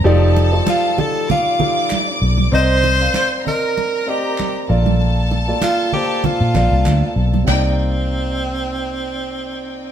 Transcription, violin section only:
X:1
M:4/4
L:1/8
Q:"Swing 16ths" 1/4=97
K:Cdor
V:1 name="Violin section"
[Aa]4 [dd']4 | [cc']3 [Bb]4 [Aa]- | [Aa]8 | [Edg]8 |]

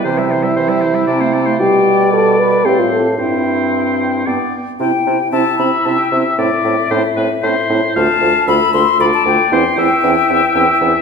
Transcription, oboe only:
X:1
M:3/4
L:1/16
Q:1/4=114
K:C
V:1 name="Oboe"
c e c e c e c e d c d c | d8 c4 | c8 d2 z2 | z4 e8 |
d4 c2 B2 c4 | f4 e4 d4 | c2 e6 e4 |]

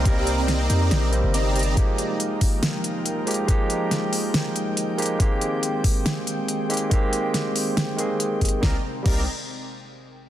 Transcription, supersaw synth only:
X:1
M:4/4
L:1/16
Q:1/4=140
K:Cm
V:1 name="Supersaw synth"
[CGde]3 [CGdeb]3 [CGdeb]4 z2 [CGdeb]2 [CGdeb]2 | z16 | z16 | z16 |
z16 | [CGdeb] z3 [CGdeb]2 z8 z2 |]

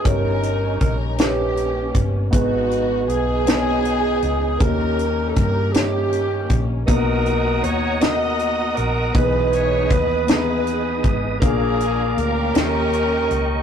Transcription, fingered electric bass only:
X:1
M:6/8
L:1/8
Q:3/8=53
K:D#phr
V:1 name="Fingered electric bass" clef=bass
=G,,,2 A,,,3 G,,, | G,,,2 B,,,3 C,, | D,,2 =G,,3 A,,, | B,,,2 D,,3 A,,, |
B,,,2 D,,3 G,,, | A,,,2 =D,, ^D,,2 C,, |]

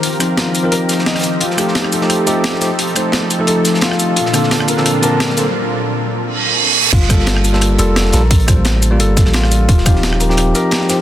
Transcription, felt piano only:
X:1
M:4/4
L:1/16
Q:"Swing 16ths" 1/4=174
K:Gm
V:1 name="Felt piano"
z4 F2 z2 B2 z2 e z e2 | F2 F2 z2 A2 z2 A z3 c2 | z8 A2 z2 F2 z2 | F2 F2 z2 B2 z2 B z3 c2 |
z16 | F2 F2 z2 A2 z2 A z3 B2 | z8 A2 z2 F2 z2 | F2 F2 z2 B2 z2 B z3 c2 |]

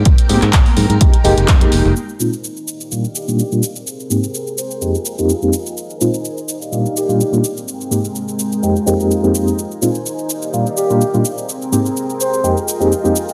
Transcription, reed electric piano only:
X:1
M:4/4
L:1/16
Q:"Swing 16ths" 1/4=126
K:Bbmix
V:1 name="Reed electric piano"
z2 [B,CEG] z4 z [A,B,EG] z [A,B,EG]3 [A,B,EG]3 | z2 [B,,A,CEF] z4 z [B,,G,B,DF] z2 [B,,G,B,DF] z [B,,G,B,DF] z2 | z2 [A,,B,CEG] z4 z [F,,A,B,CEG] z2 [F,,A,B,CEG] z [F,,A,B,CEG] z2 | z2 [B,,A,CEF] z4 z [B,,G,B,DF] z2 [B,,G,B,DF] z [B,,G,B,DF] z2 |
z2 [A,,B,CEG] z4 z [F,,A,B,CEG] z [F,,A,B,CEG]3 [F,,A,B,CEG]3 | z2 [B,,A,CEF] z4 z [B,,G,B,DF] z2 [B,,G,B,DF] z [B,,G,B,DF] z2 | z2 [A,,B,CEG] z4 z [F,,A,B,CEG] z2 [F,,A,B,CEG] z [F,,A,B,CEG] z2 |]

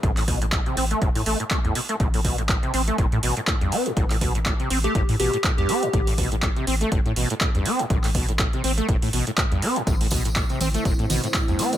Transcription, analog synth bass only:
X:1
M:4/4
L:1/16
Q:"Swing 16ths" 1/4=122
K:Am
V:1 name="Analog synth bass" clef=bass
A,,,4 z2 A,,, z G,,, A,, A,,, z2 E,, z2 | A,,,4 z2 A,,, z G,,, A,, A,,, z2 E,, z2 | A,,,4 z2 A,,, z G,,, A,, A,,, z2 E,, z2 | A,,,4 z2 A,,, z G,,, A,, A,,, z2 E,, z2 |
A,,,4 z2 A,,, z G,,, A,, A,,, z2 E,, z2 | A,,,4 z2 A,,, z G,,, A,, A,,, z2 E,, z2 |]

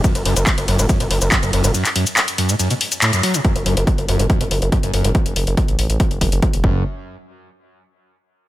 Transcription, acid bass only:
X:1
M:4/4
L:1/16
Q:1/4=141
K:F#m
V:1 name="Acid bass" clef=bass
F,, z F,, z3 F,, A,, F,, B,, z2 F,, F,, F,, A,, | F,, z F,, z3 F,, A,, F,, B,, z2 A,, F,, F, B,, | F,, z F,, z3 F,, A,, F,, B,, z2 F,, F,, F,, A,, | z12 z2 F,,2 |
z16 |]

